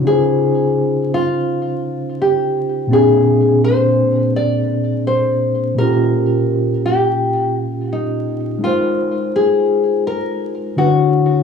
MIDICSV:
0, 0, Header, 1, 3, 480
1, 0, Start_track
1, 0, Key_signature, -4, "major"
1, 0, Tempo, 714286
1, 38, Time_signature, 4, 2, 24, 8
1, 7681, End_track
2, 0, Start_track
2, 0, Title_t, "Nylon-string guitar"
2, 0, Program_c, 0, 24
2, 46, Note_on_c, 0, 68, 102
2, 764, Note_off_c, 0, 68, 0
2, 767, Note_on_c, 0, 65, 97
2, 1487, Note_off_c, 0, 65, 0
2, 1489, Note_on_c, 0, 67, 82
2, 1937, Note_off_c, 0, 67, 0
2, 1970, Note_on_c, 0, 68, 98
2, 2417, Note_off_c, 0, 68, 0
2, 2448, Note_on_c, 0, 72, 106
2, 2928, Note_off_c, 0, 72, 0
2, 2931, Note_on_c, 0, 74, 98
2, 3405, Note_off_c, 0, 74, 0
2, 3407, Note_on_c, 0, 72, 94
2, 3885, Note_off_c, 0, 72, 0
2, 3887, Note_on_c, 0, 70, 101
2, 4605, Note_off_c, 0, 70, 0
2, 4608, Note_on_c, 0, 67, 95
2, 5118, Note_off_c, 0, 67, 0
2, 5118, Note_on_c, 0, 65, 95
2, 5326, Note_on_c, 0, 63, 79
2, 5345, Note_off_c, 0, 65, 0
2, 5802, Note_off_c, 0, 63, 0
2, 5804, Note_on_c, 0, 65, 98
2, 6288, Note_on_c, 0, 68, 96
2, 6296, Note_off_c, 0, 65, 0
2, 6763, Note_off_c, 0, 68, 0
2, 6766, Note_on_c, 0, 70, 91
2, 7215, Note_off_c, 0, 70, 0
2, 7245, Note_on_c, 0, 66, 88
2, 7681, Note_off_c, 0, 66, 0
2, 7681, End_track
3, 0, Start_track
3, 0, Title_t, "Tine electric piano"
3, 0, Program_c, 1, 4
3, 0, Control_c, 1, 64, 127
3, 10, Note_on_c, 1, 49, 61
3, 25, Note_on_c, 1, 61, 55
3, 39, Note_on_c, 1, 63, 52
3, 48, Control_c, 1, 64, 0
3, 52, Note_on_c, 1, 65, 50
3, 67, Note_on_c, 1, 72, 65
3, 150, Control_c, 1, 64, 127
3, 1917, Note_off_c, 1, 49, 0
3, 1925, Note_off_c, 1, 61, 0
3, 1929, Note_on_c, 1, 46, 72
3, 1932, Note_off_c, 1, 63, 0
3, 1939, Note_off_c, 1, 65, 0
3, 1942, Note_on_c, 1, 58, 65
3, 1946, Note_off_c, 1, 72, 0
3, 1955, Note_on_c, 1, 60, 76
3, 1967, Control_c, 1, 64, 0
3, 1970, Note_on_c, 1, 62, 76
3, 1985, Note_on_c, 1, 68, 92
3, 2090, Control_c, 1, 64, 127
3, 3837, Note_off_c, 1, 46, 0
3, 3843, Note_off_c, 1, 58, 0
3, 3850, Note_off_c, 1, 60, 0
3, 3857, Note_off_c, 1, 62, 0
3, 3861, Note_on_c, 1, 46, 61
3, 3865, Note_off_c, 1, 68, 0
3, 3875, Note_on_c, 1, 58, 54
3, 3887, Control_c, 1, 64, 0
3, 3890, Note_on_c, 1, 61, 56
3, 3903, Note_on_c, 1, 65, 57
3, 3917, Note_on_c, 1, 67, 66
3, 4011, Control_c, 1, 64, 127
3, 5763, Note_off_c, 1, 46, 0
3, 5770, Note_off_c, 1, 58, 0
3, 5770, Note_on_c, 1, 56, 56
3, 5777, Note_off_c, 1, 61, 0
3, 5784, Note_off_c, 1, 65, 0
3, 5785, Note_on_c, 1, 63, 56
3, 5791, Note_off_c, 1, 67, 0
3, 5800, Note_on_c, 1, 65, 56
3, 5808, Control_c, 1, 64, 0
3, 5812, Note_on_c, 1, 70, 57
3, 5826, Note_on_c, 1, 72, 63
3, 5918, Control_c, 1, 64, 127
3, 7197, Note_off_c, 1, 56, 0
3, 7205, Note_off_c, 1, 63, 0
3, 7212, Note_off_c, 1, 65, 0
3, 7218, Note_off_c, 1, 70, 0
3, 7225, Note_off_c, 1, 72, 0
3, 7233, Note_on_c, 1, 50, 59
3, 7239, Note_on_c, 1, 62, 52
3, 7248, Control_c, 1, 64, 0
3, 7248, Note_on_c, 1, 64, 52
3, 7254, Note_on_c, 1, 66, 56
3, 7261, Note_on_c, 1, 71, 56
3, 7302, Note_off_c, 1, 71, 0
3, 7303, Note_on_c, 1, 73, 60
3, 7382, Control_c, 1, 64, 127
3, 7681, Note_off_c, 1, 50, 0
3, 7681, Note_off_c, 1, 62, 0
3, 7681, Note_off_c, 1, 64, 0
3, 7681, Note_off_c, 1, 66, 0
3, 7681, Note_off_c, 1, 73, 0
3, 7681, End_track
0, 0, End_of_file